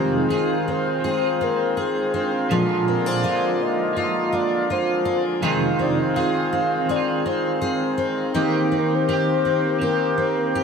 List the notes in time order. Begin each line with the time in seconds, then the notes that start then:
Already playing: F2 C3 D#3 G#3 C4 F4 G#4
0.00 G4
0.17 D#4 G#4
0.29 D#3 G#3 C4 G#4
0.34 F4
0.68 C4 C5
1.00 D#3 G#4
1.05 G#3 C4
1.11 F4
1.41 C4 A#4
1.77 G#4
2.12 C4 D4
2.36 F4
2.49 A#2 D3 F3 G#3 A#3 D4 F4
2.60 G#4
2.88 C4 A#4
3.06 D4 C5
3.22 F3 G#3 F4
3.27 F4
3.60 A#3 D#5
3.93 F3 F4
3.97 G#3
4.04 F4
4.33 D4 D5
4.70 F4 C5
5.05 D4
5.41 F2 C3 D#3 G#3 C4 F4 G#4
5.79 C4 D5
5.99 D#5
6.14 D#3 G#3 C4 G#4 F5
6.19 F4
6.53 C4
6.85 D#3
6.89 G#3 C4 G#4 D5
6.96 F4
7.26 C4 C5
7.62 C4 G#4
7.84 D#4
7.98 C4
8.34 D#3 A#3 C4 G4
8.72 C4
8.78 A#4
8.95 C5
9.08 D#3 A#3 C4 G4
9.13 G4
9.45 C4
9.79 D#3 G4
9.83 A#3 C4 A#4
9.89 G4
10.18 C4
10.55 G4